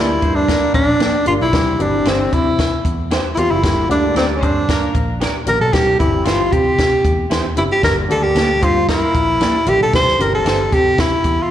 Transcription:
Already playing: picked electric bass D2, upright piano G3 A#3 D4 A#4, horn section D4 D5, tenor saxophone E4
0.22 picked electric bass G2, horn section C4 C5, kick, closed hi-hat
0.35 tenor saxophone D4
0.48 horn section A#3 A#4, kick, snare, closed hi-hat
0.74 picked electric bass A#1, tenor saxophone D4, kick, closed hi-hat
0.87 picked electric bass A#1
0.99 clean electric guitar A#3 D4 G4, snare, closed hi-hat
1.26 picked electric bass G1, upright piano G3 A#3 D4 A#4, tenor saxophone F4, closed hi-hat
1.40 picked electric bass B1, tenor saxophone E4
1.53 picked electric bass C2, upright piano E3 G3 C4 G4, kick, snare, closed hi-hat
1.79 picked electric bass G1, upright piano E3 G3 C4 G4, tenor saxophone D4, closed hi-hat
2.05 picked electric bass G1, tenor saxophone C4, clean electric guitar E4 G4 C5, snare, closed hi-hat
2.33 picked electric bass C3, tenor saxophone E4, kick, closed hi-hat
2.59 kick, snare, closed hi-hat
2.85 picked electric bass E2, kick, closed hi-hat
3.11 clean electric guitar E4 G4 C5, snare, closed hi-hat
3.35 picked electric bass E2, upright piano E3 G3 C4 G4, tenor saxophone E4 F4, closed hi-hat
3.51 picked electric bass F#1, tenor saxophone E4
3.62 picked electric bass G1, upright piano D3 G3 A#3 G4, kick, snare, closed hi-hat
3.88 picked electric bass D2, upright piano D3 G3 A#3 G4, horn section D4 D5, tenor saxophone D4, closed hi-hat
4.15 picked electric bass D2, tenor saxophone C4, clean electric guitar G4 A#4 D5, snare, closed hi-hat
4.36 tenor saxophone C#4
4.41 picked electric bass G2, horn section C4 C5, tenor saxophone D4, kick, closed hi-hat
4.69 horn section A#3 A#4, kick, snare, closed hi-hat
4.95 picked electric bass A#1, kick, closed hi-hat
5.20 clean electric guitar G4 A#4 D5, snare, closed hi-hat
5.46 picked electric bass A#1, upright piano D3 G3 A#3 G4, tenor saxophone A#4, closed hi-hat
5.60 picked electric bass B1, tenor saxophone A4
5.73 picked electric bass C2, upright piano E3 G3 C4 G4, tenor saxophone G4, kick, snare, closed hi-hat
5.99 picked electric bass G1, upright piano E3 G3 C4 G4, tenor saxophone E4, kick, closed hi-hat
6.25 picked electric bass G1, clean electric guitar E4 G4 C5, tenor saxophone F4, snare, closed hi-hat
6.52 picked electric bass C3, tenor saxophone G4, kick, closed hi-hat
6.79 kick, snare, closed hi-hat
7.05 picked electric bass E2, kick, closed hi-hat
7.30 picked electric bass E2, clean electric guitar E4 G4 C5, snare, closed hi-hat
7.56 picked electric bass F#1, upright piano E3 G3 C4 G4, tenor saxophone E4, closed hi-hat
7.72 tenor saxophone G4
7.82 picked electric bass G1, upright piano D3 G3 A#3 G4, tenor saxophone A#4, kick, snare, closed hi-hat
8.08 picked electric bass D2, upright piano D3 G3 A3 G4, horn section D4 D5, tenor saxophone A4, closed hi-hat
8.15 upright piano A#3
8.23 tenor saxophone G4
8.35 picked electric bass D2, clean electric guitar A#3 D4 G4, snare, closed hi-hat
8.62 picked electric bass G2, horn section C4 C5, tenor saxophone F4, kick, closed hi-hat
8.89 horn section A#3 A#4, tenor saxophone E4, kick, snare, closed hi-hat
9.15 picked electric bass A#1, kick, closed hi-hat
9.40 clean electric guitar A#3 D4 G4, snare, closed hi-hat
9.66 picked electric bass A#1, upright piano D3 G3 A#3 G4, tenor saxophone G4, closed hi-hat
9.80 picked electric bass B1, tenor saxophone A4
9.92 picked electric bass C2, upright piano E3 G3 C4 G4, tenor saxophone C5, kick, snare, closed hi-hat
10.08 snare
10.18 picked electric bass G1, upright piano E3 G3 C4 G4, tenor saxophone A#4, closed hi-hat
10.35 tenor saxophone A4
10.45 picked electric bass G1, clean electric guitar E4 G4 C5, snare, closed hi-hat
10.72 picked electric bass C3, tenor saxophone G4, kick, closed hi-hat
10.98 tenor saxophone E4, kick, snare, closed hi-hat
11.24 picked electric bass E2, kick, closed hi-hat
11.42 tenor saxophone F4

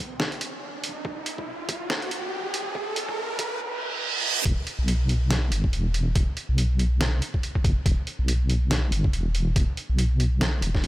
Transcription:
Already playing: wobble bass B1, riser
0.20 snare
0.32 closed hi-hat
0.41 closed hi-hat
0.83 wobble bass G1, closed hi-hat
1.05 wobble bass E1, kick
1.26 closed hi-hat
1.38 wobble bass B1, kick
1.69 kick, closed hi-hat
1.90 snare
2.02 closed hi-hat
2.11 wobble bass G1, closed hi-hat
2.32 wobble bass E1
2.54 closed hi-hat
2.75 wobble bass E1, kick
2.96 closed hi-hat
3.09 wobble bass B1, kick
3.39 kick, closed hi-hat
3.60 reverse cymbal
4.45 wobble bass E1, kick, closed hi-hat
4.67 closed hi-hat
4.79 wobble bass B1
4.88 closed hi-hat
5.09 closed hi-hat
5.31 snare, closed hi-hat
5.52 wobble bass G1, closed hi-hat
5.64 kick
5.73 wobble bass E1, closed hi-hat
5.94 closed hi-hat
6.15 wobble bass E1, kick, closed hi-hat
6.37 closed hi-hat
6.49 wobble bass B1
6.58 closed hi-hat
6.79 closed hi-hat
7.01 snare, closed hi-hat
7.22 closed hi-hat
7.34 kick
7.43 closed hi-hat
7.55 kick
7.64 wobble bass G1, kick, closed hi-hat
7.86 wobble bass E1, kick, closed hi-hat
8.07 closed hi-hat
8.19 wobble bass B1
8.28 closed hi-hat
8.50 closed hi-hat
8.71 snare, closed hi-hat
8.92 wobble bass G1, closed hi-hat
9.04 kick
9.13 wobble bass E1, closed hi-hat
9.35 closed hi-hat
9.56 wobble bass E1, kick, closed hi-hat
9.77 closed hi-hat
9.90 wobble bass B1
9.99 closed hi-hat
10.20 closed hi-hat
10.41 snare, closed hi-hat
10.62 wobble bass E1, closed hi-hat
10.75 wobble bass E1, kick, snare
10.84 closed hi-hat

